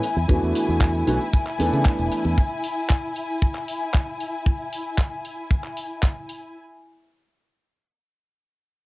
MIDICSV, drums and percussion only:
0, 0, Header, 1, 2, 480
1, 0, Start_track
1, 0, Tempo, 521739
1, 268, Time_signature, 4, 2, 24, 8
1, 8150, End_track
2, 0, Start_track
2, 0, Title_t, "Drums"
2, 29, Note_on_c, 9, 46, 105
2, 32, Note_on_c, 9, 82, 91
2, 121, Note_off_c, 9, 46, 0
2, 124, Note_off_c, 9, 82, 0
2, 155, Note_on_c, 9, 82, 41
2, 247, Note_off_c, 9, 82, 0
2, 268, Note_on_c, 9, 36, 118
2, 269, Note_on_c, 9, 82, 52
2, 360, Note_off_c, 9, 36, 0
2, 361, Note_off_c, 9, 82, 0
2, 398, Note_on_c, 9, 82, 28
2, 490, Note_off_c, 9, 82, 0
2, 509, Note_on_c, 9, 46, 103
2, 515, Note_on_c, 9, 82, 85
2, 601, Note_off_c, 9, 46, 0
2, 607, Note_off_c, 9, 82, 0
2, 638, Note_on_c, 9, 82, 35
2, 730, Note_off_c, 9, 82, 0
2, 741, Note_on_c, 9, 36, 118
2, 745, Note_on_c, 9, 39, 113
2, 751, Note_on_c, 9, 82, 49
2, 833, Note_off_c, 9, 36, 0
2, 837, Note_off_c, 9, 39, 0
2, 843, Note_off_c, 9, 82, 0
2, 871, Note_on_c, 9, 82, 23
2, 963, Note_off_c, 9, 82, 0
2, 988, Note_on_c, 9, 46, 103
2, 992, Note_on_c, 9, 82, 101
2, 1080, Note_off_c, 9, 46, 0
2, 1084, Note_off_c, 9, 82, 0
2, 1107, Note_on_c, 9, 82, 37
2, 1199, Note_off_c, 9, 82, 0
2, 1227, Note_on_c, 9, 36, 101
2, 1233, Note_on_c, 9, 82, 44
2, 1319, Note_off_c, 9, 36, 0
2, 1325, Note_off_c, 9, 82, 0
2, 1348, Note_on_c, 9, 39, 38
2, 1353, Note_on_c, 9, 82, 24
2, 1440, Note_off_c, 9, 39, 0
2, 1445, Note_off_c, 9, 82, 0
2, 1470, Note_on_c, 9, 46, 102
2, 1471, Note_on_c, 9, 82, 84
2, 1562, Note_off_c, 9, 46, 0
2, 1563, Note_off_c, 9, 82, 0
2, 1591, Note_on_c, 9, 82, 42
2, 1683, Note_off_c, 9, 82, 0
2, 1704, Note_on_c, 9, 39, 113
2, 1706, Note_on_c, 9, 36, 127
2, 1709, Note_on_c, 9, 82, 55
2, 1796, Note_off_c, 9, 39, 0
2, 1798, Note_off_c, 9, 36, 0
2, 1801, Note_off_c, 9, 82, 0
2, 1827, Note_on_c, 9, 82, 26
2, 1919, Note_off_c, 9, 82, 0
2, 1947, Note_on_c, 9, 46, 104
2, 1951, Note_on_c, 9, 82, 81
2, 2039, Note_off_c, 9, 46, 0
2, 2043, Note_off_c, 9, 82, 0
2, 2063, Note_on_c, 9, 82, 39
2, 2155, Note_off_c, 9, 82, 0
2, 2187, Note_on_c, 9, 36, 108
2, 2279, Note_off_c, 9, 36, 0
2, 2426, Note_on_c, 9, 46, 108
2, 2518, Note_off_c, 9, 46, 0
2, 2664, Note_on_c, 9, 39, 115
2, 2670, Note_on_c, 9, 36, 115
2, 2756, Note_off_c, 9, 39, 0
2, 2762, Note_off_c, 9, 36, 0
2, 2908, Note_on_c, 9, 46, 104
2, 3000, Note_off_c, 9, 46, 0
2, 3148, Note_on_c, 9, 36, 98
2, 3240, Note_off_c, 9, 36, 0
2, 3266, Note_on_c, 9, 39, 37
2, 3358, Note_off_c, 9, 39, 0
2, 3387, Note_on_c, 9, 46, 101
2, 3479, Note_off_c, 9, 46, 0
2, 3623, Note_on_c, 9, 39, 107
2, 3629, Note_on_c, 9, 36, 111
2, 3715, Note_off_c, 9, 39, 0
2, 3721, Note_off_c, 9, 36, 0
2, 3868, Note_on_c, 9, 46, 103
2, 3960, Note_off_c, 9, 46, 0
2, 4106, Note_on_c, 9, 36, 108
2, 4198, Note_off_c, 9, 36, 0
2, 4349, Note_on_c, 9, 46, 103
2, 4441, Note_off_c, 9, 46, 0
2, 4582, Note_on_c, 9, 36, 104
2, 4584, Note_on_c, 9, 39, 103
2, 4674, Note_off_c, 9, 36, 0
2, 4676, Note_off_c, 9, 39, 0
2, 4829, Note_on_c, 9, 46, 101
2, 4921, Note_off_c, 9, 46, 0
2, 5066, Note_on_c, 9, 36, 102
2, 5158, Note_off_c, 9, 36, 0
2, 5188, Note_on_c, 9, 39, 36
2, 5280, Note_off_c, 9, 39, 0
2, 5308, Note_on_c, 9, 46, 95
2, 5400, Note_off_c, 9, 46, 0
2, 5545, Note_on_c, 9, 39, 101
2, 5547, Note_on_c, 9, 36, 116
2, 5637, Note_off_c, 9, 39, 0
2, 5639, Note_off_c, 9, 36, 0
2, 5788, Note_on_c, 9, 46, 99
2, 5880, Note_off_c, 9, 46, 0
2, 8150, End_track
0, 0, End_of_file